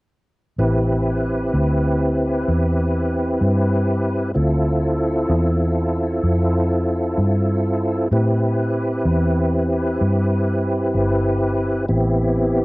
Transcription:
0.58 1.50 A1 medium
0.58 4.31 C4 medium
0.58 4.32 E4 medium
0.58 4.32 G4 medium
0.58 4.32 B4 medium
1.54 2.45 D2 medium
2.48 3.39 E2 medium
3.41 4.32 G2 medium
4.34 5.27 D2 medium
4.34 8.08 C4 medium
4.34 8.08 E4 medium
4.34 8.08 F4 medium
4.34 8.08 A4 medium
5.29 6.21 E2 medium
6.23 7.15 F2 medium
7.18 8.09 G2 medium
8.11 9.03 A2 medium
8.11 11.86 C4 medium
8.11 11.86 E4 medium
8.11 11.86 G4 medium
8.11 11.86 B4 medium
9.05 9.97 E2 loud
10.01 10.92 G2 medium
10.94 11.86 G1 medium
11.88 12.65 A1 medium
11.88 12.65 B3 medium
11.88 12.65 C4 medium
11.88 12.65 E4 medium
11.88 12.65 G4 medium

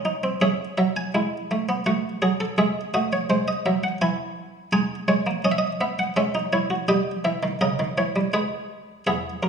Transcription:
0.00 0.39 G#2 medium
0.00 0.39 G#4 medium
0.00 0.39 G#5 medium
0.05 0.23 D#4 medium
0.24 0.41 C4 soft
0.41 0.64 C#4 medium
0.41 1.12 G#4 medium
0.41 0.64 E5 medium
0.78 1.00 F#3 medium
0.78 0.95 E5 medium
0.96 1.84 G#5 medium
1.15 1.37 G#3 medium
1.15 1.84 E4 medium
1.51 1.68 A3 medium
1.69 1.86 B3 medium
1.86 2.09 A3 medium
1.86 2.09 F#4 medium
1.86 2.56 F#5 medium
2.22 2.44 F#3 medium
2.22 2.39 G#4 medium
2.40 2.57 A4 medium
2.58 2.80 G#3 medium
2.58 2.80 G#4 medium
2.58 2.80 E5 medium
2.94 3.16 A3 medium
2.94 3.98 F#4 medium
2.94 3.11 D#5 medium
3.13 3.29 C#5 medium
3.30 3.52 G#3 medium
3.30 3.47 C5 medium
3.48 3.65 D#5 medium
3.66 3.88 F#3 medium
3.66 3.83 E5 medium
3.84 4.00 F#5 medium
4.02 4.70 E3 medium
4.02 4.70 E4 medium
4.02 4.70 G#5 medium
4.73 4.95 G#3 medium
4.73 5.42 D#4 medium
4.73 4.95 G#5 medium
5.08 5.25 G#3 medium
5.08 5.30 C#5 medium
5.27 6.13 A#3 medium
5.45 5.67 C#4 medium
5.45 5.48 D#5 medium
5.52 5.58 E5 medium
5.58 5.72 D#5 medium
5.81 6.03 B3 medium
5.81 5.98 E5 medium
5.99 6.16 F#5 medium
6.16 6.86 G#3 medium
6.16 6.34 C#4 medium
6.16 6.39 E5 medium
6.35 6.52 D#4 medium
6.53 6.70 E4 medium
6.53 6.75 C#5 medium
6.70 6.88 F#4 medium
6.88 7.11 G3 medium
6.88 7.58 G4 medium
6.88 7.11 D#5 medium
7.25 7.42 E3 medium
7.25 7.47 E5 medium
7.43 7.60 D#3 medium
7.61 7.78 C#3 medium
7.61 8.31 A#4 medium
7.61 7.83 D#5 medium
7.79 7.97 D#3 medium
7.98 8.15 E3 medium
7.98 8.20 C#5 medium
8.16 8.33 G3 medium
8.33 9.04 G#3 medium
8.33 9.04 G#4 medium
8.33 9.04 B4 medium
9.07 9.29 E2 soft
9.07 9.49 B3 medium
9.07 9.49 G#4 soft
9.07 9.29 E5 medium
9.43 9.49 F#2 medium
9.43 9.49 A#4 medium

